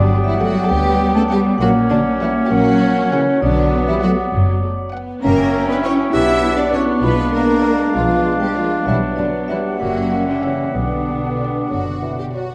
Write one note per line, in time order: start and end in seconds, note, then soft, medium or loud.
0.00 0.52 G1 medium
0.00 0.23 D3 medium
0.00 0.24 F#3 medium
0.00 1.57 F#3 medium
0.00 0.68 G3 medium
0.00 1.56 B3 medium
0.00 0.24 D4 medium
0.00 0.20 D5 medium
0.00 2.53 D5 medium
0.00 1.61 G5 medium
0.23 0.39 E3 medium
0.23 0.40 G3 medium
0.23 0.39 E4 medium
0.23 0.38 E5 medium
0.39 0.69 F#3 medium
0.39 0.54 A3 medium
0.39 0.63 F#4 medium
0.39 0.62 F#5 medium
0.39 0.67 F#5 medium
0.63 0.70 A4 medium
0.68 1.43 D2 medium
0.68 1.14 G3 medium
0.68 1.13 B3 medium
0.68 1.58 B3 medium
0.68 1.15 G4 medium
0.68 1.12 G5 medium
1.15 1.21 A3 medium
1.15 1.22 C#4 medium
1.15 1.22 A4 medium
1.15 1.29 A5 medium
1.28 1.60 G3 medium
1.28 1.44 B3 medium
1.28 1.40 G4 medium
1.28 1.52 F#5 medium
1.28 1.57 G5 medium
1.58 2.33 A#1 medium
1.58 1.68 F#3 medium
1.58 4.92 F#3 medium
1.58 2.49 A#3 medium
1.58 1.74 A#3 medium
1.58 3.43 C#4 medium
1.58 1.69 F#4 medium
1.58 1.87 F#5 medium
1.58 4.95 F#5 medium
1.90 1.99 D3 medium
1.90 2.04 F#3 medium
1.90 1.98 D4 medium
1.90 2.18 D5 medium
2.20 2.29 E3 medium
2.20 2.34 G3 medium
2.20 2.29 E4 medium
2.20 2.49 E5 medium
2.20 2.43 F#5 medium
2.45 2.51 G4 medium
2.50 3.24 A#1 medium
2.50 3.10 F#3 medium
2.50 3.10 A#3 medium
2.50 3.42 C#4 medium
2.50 3.12 F#4 medium
2.50 3.42 C#5 medium
2.50 3.07 F#5 medium
3.11 3.20 C#3 medium
3.11 3.27 E3 medium
3.11 3.20 C#4 medium
3.11 3.40 C#5 medium
3.11 3.34 F#5 medium
3.42 4.15 B1 medium
3.42 3.86 D3 medium
3.42 3.87 F#3 medium
3.42 4.95 B3 medium
3.42 4.31 B3 medium
3.42 3.86 D4 medium
3.42 4.93 D5 medium
3.42 3.84 D5 medium
3.87 4.02 E3 medium
3.87 4.03 G3 medium
3.87 3.94 E4 medium
3.87 4.01 E5 medium
4.02 4.10 F#3 medium
4.02 4.17 A3 medium
4.02 4.11 F#4 medium
4.02 4.25 F#5 medium
4.02 4.30 F#5 medium
4.33 5.06 F#1 medium
4.33 4.62 F#3 medium
4.63 4.71 A3 medium
4.93 5.23 B3 medium
4.93 5.16 F#5 medium
5.22 5.96 F#1 medium
5.22 6.99 F#3 medium
5.22 5.65 A#3 medium
5.22 6.13 C#4 medium
5.22 5.66 C#4 medium
5.22 6.14 C#4 medium
5.22 5.65 A#4 loud
5.22 6.15 E5 medium
5.22 6.15 G5 medium
5.22 5.65 A#5 medium
5.68 5.83 B3 medium
5.68 5.83 D4 medium
5.68 5.76 B4 medium
5.68 5.82 B5 medium
5.83 6.12 C#4 medium
5.83 6.13 E4 medium
5.83 5.92 C#5 medium
5.83 6.05 E5 medium
5.83 6.11 C#6 medium
6.12 6.86 B1 medium
6.12 7.91 B3 medium
6.12 9.79 D4 medium
6.12 6.56 E4 medium
6.12 6.57 G4 medium
6.12 9.79 D5 medium
6.12 6.57 E5 loud
6.12 7.03 F#5 medium
6.12 6.55 E6 medium
6.57 6.64 D4 medium
6.57 6.73 F#4 medium
6.57 6.73 D5 medium
6.57 6.72 D6 medium
6.73 6.82 C#4 medium
6.73 7.03 E4 medium
6.73 6.81 C#5 medium
6.73 6.96 D5 medium
6.73 7.01 C#6 medium
7.03 7.78 B1 medium
7.03 8.88 G#3 medium
7.03 7.33 B3 medium
7.03 7.18 F4 medium
7.03 7.33 B4 medium
7.03 8.87 F5 medium
7.03 7.31 B5 medium
7.33 7.94 A#3 medium
7.33 7.93 D4 medium
7.33 7.94 A#4 medium
7.33 7.91 A#5 medium
7.63 7.86 D5 medium
7.93 8.69 B1 medium
7.93 8.39 F3 medium
7.93 8.85 G#3 medium
7.93 8.40 B3 medium
7.93 8.39 F4 medium
7.93 8.36 F5 medium
8.40 8.46 G3 medium
8.40 8.48 B3 medium
8.40 8.56 G4 medium
8.40 8.54 G5 medium
8.55 8.86 F3 medium
8.55 8.70 A#3 medium
8.55 8.87 F4 medium
8.55 8.78 D5 medium
8.55 8.85 F5 medium
8.86 9.62 B1 medium
8.86 8.95 E3 medium
8.86 9.82 F#3 medium
8.86 9.00 G3 medium
8.86 9.77 B3 medium
8.86 8.95 E4 medium
8.86 9.15 E5 medium
8.86 12.34 F#5 medium
9.16 9.27 D3 medium
9.16 9.48 F#3 medium
9.16 9.26 D4 medium
9.16 9.46 D5 medium
9.48 9.57 E3 medium
9.48 9.80 G3 medium
9.48 9.58 E4 medium
9.48 9.72 D5 soft
9.48 9.77 E5 medium
9.79 10.57 F#1 medium
9.79 10.26 F#3 medium
9.79 11.69 G3 soft
9.79 10.76 A#3 soft
9.79 10.26 A#3 soft
9.79 10.74 C#4 medium
9.79 10.26 F#4 medium
9.79 10.76 E5 soft
9.79 10.23 F#5 medium
10.26 10.42 D3 soft
10.26 10.35 F#3 soft
10.26 10.43 D4 medium
10.26 10.41 D5 soft
10.42 10.73 C#3 soft
10.42 10.74 E3 soft
10.42 10.74 C#4 soft
10.42 10.72 C#5 soft
10.42 10.66 E5 soft
10.74 11.53 B1 medium
10.74 12.31 B2 soft
10.74 12.32 D3 medium
10.74 11.68 B3 medium
10.74 12.34 B3 soft
10.74 12.16 D4 medium
10.74 12.30 B4 soft
10.74 12.35 D5 soft
11.39 11.63 D5 soft
11.69 12.49 F#1 soft
11.69 11.84 F#3 soft
11.69 12.15 F#4 medium
12.02 12.17 E3 soft
12.19 12.25 G4 medium
12.34 12.49 F#3 soft
12.34 12.55 F#4 medium
12.34 12.55 D5 soft